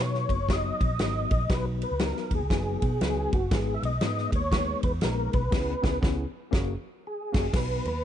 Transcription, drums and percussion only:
0.15 snare
0.29 kick, ride
0.49 kick, snare, ride
0.81 kick, ride
0.99 snare, ride
1.31 kick, ride
1.50 kick, snare, ride
1.82 ride
1.99 snare, ride
2.17 snare
2.31 kick, ride
2.50 kick, snare, ride
2.82 kick, ride
3.01 snare, ride
3.33 kick, ride
3.51 kick, snare, ride
3.83 ride
4.01 snare, ride
4.18 snare
4.32 kick, ride
4.52 kick, snare, ride
4.83 kick, ride
5.01 snare, ride
5.33 kick, ride
5.52 kick, snare, crash
5.84 kick, snare
6.03 kick, snare
6.53 kick, snare
7.34 kick, snare, crash
7.54 kick, snare, crash
7.85 ride

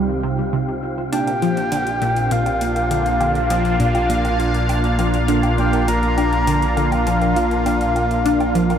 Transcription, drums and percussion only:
1.13 closed hi-hat
1.27 closed hi-hat, low woodblock
1.42 closed hi-hat
1.57 closed hi-hat
1.72 closed hi-hat, low woodblock
1.87 closed hi-hat
2.02 closed hi-hat, low woodblock
2.16 closed hi-hat
2.31 closed hi-hat
2.46 closed hi-hat, low woodblock
2.61 closed hi-hat
2.76 closed hi-hat, low woodblock
2.91 closed hi-hat
3.06 closed hi-hat
3.21 closed hi-hat, low woodblock
3.35 closed hi-hat
3.50 closed hi-hat, low woodblock
3.65 closed hi-hat
3.80 closed hi-hat
3.95 closed hi-hat, low woodblock
4.10 closed hi-hat
4.25 closed hi-hat, low woodblock
4.40 closed hi-hat
4.54 closed hi-hat
4.69 closed hi-hat, low woodblock
4.84 closed hi-hat
4.99 closed hi-hat, low woodblock
5.14 closed hi-hat
5.28 closed hi-hat
5.43 closed hi-hat, low woodblock
5.58 closed hi-hat
5.73 closed hi-hat, low woodblock
5.88 closed hi-hat
6.03 closed hi-hat
6.18 closed hi-hat, low woodblock
6.33 closed hi-hat
6.47 closed hi-hat, low woodblock
6.62 closed hi-hat
6.77 closed hi-hat
6.92 closed hi-hat, low woodblock
7.07 closed hi-hat
7.22 closed hi-hat, low woodblock
7.36 closed hi-hat
7.51 closed hi-hat
7.66 closed hi-hat, low woodblock
7.81 closed hi-hat
7.96 closed hi-hat, low woodblock
8.11 closed hi-hat
8.26 closed hi-hat
8.40 closed hi-hat, low woodblock
8.55 closed hi-hat
8.70 closed hi-hat, low woodblock

